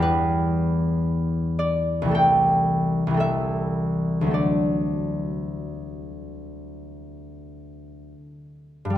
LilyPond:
<<
  \new Staff \with { instrumentName = "Harp" } { \time 4/4 \key d \mixolydian \tempo 4 = 53 <b' g''>4. d''8 g''4 e''4 | d''1 | }
  \new Staff \with { instrumentName = "Harp" } { \clef bass \time 4/4 \key d \mixolydian <e, g b g'>2 <c, e a a'>4 <c, e a a'>4 | <d, fis a a'>1 | }
>>